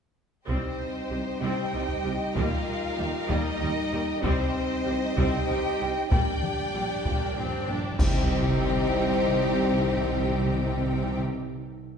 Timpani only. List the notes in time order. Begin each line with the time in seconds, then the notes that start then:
6.42 G2
6.49 G2
6.57 G2
6.65 G2
6.73 G2
6.80 G2
6.87 G2
6.95 G2
7.03 G2
7.11 G2
7.18 G2
7.26 G2
7.33 G2
7.41 G2
7.48 G2
7.55 G2
7.63 G2
7.72 G2
7.78 G2
7.85 G2
7.92 G2
8.00 C3
8.07 C3
8.14 C3
8.21 C3
8.28 C3
8.34 C3
8.41 C3
8.48 C3
8.55 C3
8.62 C3
8.68 C3
8.75 C3
8.82 C3
9.02 C3
9.08 C3
9.15 C3
9.22 C3
9.28 C3
9.34 C3
9.41 C3
9.47 C3
9.53 C3
9.60 C3
9.67 C3
9.74 C3
9.80 C3
9.86 C3
9.93 C3
9.99 C3
10.05 C3
10.12 C3
10.18 C3
10.25 C3
10.32 C3
10.38 C3
10.45 C3
10.52 C3
10.58 C3
10.64 C3
10.71 C3
10.77 C3
10.84 C3
10.91 C3
10.98 C3
11.04 C3
11.10 C3
11.17 C3